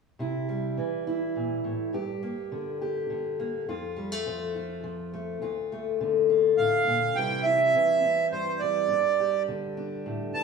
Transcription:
0.19 0.78 C3 soft
0.19 1.06 E4 soft
0.49 2.22 G3 soft
0.77 1.90 E3 soft
1.07 1.91 E4 soft
1.36 1.64 A#2 soft
1.64 1.94 A2 soft
1.93 3.64 G2 soft
1.93 2.80 G4 soft
2.23 3.38 A#3 soft
2.52 3.09 D3 soft
2.81 3.65 G4 soft
3.10 3.68 D3 soft
3.40 3.65 A#3 soft
3.68 5.39 F2 medium
3.68 4.56 F4 soft
3.96 4.12 G3 soft
4.12 5.12 A3 soft
4.27 4.82 F3 soft
4.56 5.39 F4 soft
4.84 5.38 F3 soft
5.14 5.39 A3 soft
5.42 7.16 D2 medium
5.42 6.28 F4 soft
5.72 7.13 A3 soft
6.00 7.16 D3 soft
6.30 7.13 F4 soft
6.57 6.87 A2 soft
6.57 7.17 F5 medium
6.87 7.16 A#2 soft
7.15 7.74 C3 medium
7.15 7.73 E3 soft
7.15 8.61 G3 soft
7.15 8.02 C4 soft
7.15 7.45 E4 soft
7.15 7.45 G5 medium
7.43 8.87 E4 soft
7.43 8.27 E5 medium
7.75 8.87 E3 soft
8.03 8.86 C4 soft
8.31 8.86 G2 soft
8.31 8.61 C5 medium
8.59 10.43 G3 soft
8.59 9.43 D5 medium
8.90 10.33 G2 medium
8.90 9.76 D4 soft
9.20 10.43 G4 soft
9.48 10.43 D3 soft
9.77 10.43 D4 soft
10.06 10.35 A2 soft
10.34 10.43 G2 soft
10.34 10.43 A5 medium

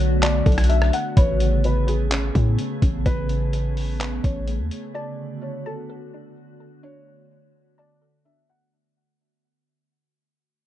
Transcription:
0.00 0.42 B1 loud
0.00 1.13 D3 medium
0.00 1.13 A3 medium
0.00 1.13 B3 medium
0.00 0.69 D4 loud
0.00 1.13 F#4 medium
0.00 0.45 A4 medium
0.00 0.18 C#5 loud
0.22 0.67 D5 loud
0.22 1.17 A5 loud
0.22 clap loud
0.22 closed hi-hat medium
0.46 0.91 B1 loud
0.46 1.17 A4 medium
0.46 kick medium
0.46 closed hi-hat soft
0.52 closed hi-hat medium
0.58 cross-stick loud
0.58 closed hi-hat medium
0.64 closed hi-hat medium
0.69 1.17 D4 medium
0.69 0.92 E5 medium
0.69 closed hi-hat medium
0.82 cross-stick medium
0.93 1.16 F#5 medium
0.93 closed hi-hat medium
1.17 2.31 A1 loud
1.17 4.91 C#3 medium
1.17 8.69 A3 medium
1.17 8.69 B3 medium
1.17 4.91 G#4 medium
1.17 1.86 B4 loud
1.17 1.61 C#5 loud
1.17 kick loud
1.17 closed hi-hat medium
1.40 closed hi-hat medium
1.64 1.87 B4 medium
1.64 closed hi-hat medium
1.87 2.55 G#4 medium
1.87 3.29 B4 medium
1.87 closed hi-hat medium
2.11 2.81 C#4 medium
2.11 clap loud
2.11 closed hi-hat medium
2.35 2.58 A2 loud
2.35 3.05 B3 medium
2.35 kick medium
2.35 closed hi-hat medium
2.59 closed hi-hat medium
2.82 3.05 A1 loud
2.82 4.22 C#4 medium
2.82 kick medium
2.82 closed hi-hat medium
3.06 4.20 A1 loud
3.06 4.46 B3 loud
3.06 4.20 B4 loud
3.06 kick loud
3.06 closed hi-hat medium
3.29 closed hi-hat medium
3.53 closed hi-hat medium
3.77 open hi-hat medium
4.00 4.95 B4 loud
4.00 clap loud
4.00 closed hi-hat medium
4.23 4.61 A1 loud
4.23 4.95 C#4 medium
4.23 4.47 C#5 medium
4.23 kick medium
4.23 closed hi-hat medium
4.47 4.95 B3 medium
4.47 closed hi-hat medium
4.59 4.71 E2 medium
4.71 closed hi-hat medium
4.94 8.69 D3 medium
4.94 8.69 F#4 medium
4.94 5.39 D5 medium
4.94 5.65 A5 loud
5.42 5.64 C#5 medium
5.66 6.33 A4 medium
5.66 7.08 A5 loud
5.90 6.59 A4 loud
6.14 6.82 D4 medium
6.60 8.00 A4 medium
6.83 8.25 D4 loud
6.83 7.74 C#5 loud
7.78 8.23 D5 medium
7.78 8.73 A5 loud
8.02 8.73 A4 medium
8.25 8.73 D4 medium
8.25 8.48 E5 medium
8.49 8.72 F#5 medium

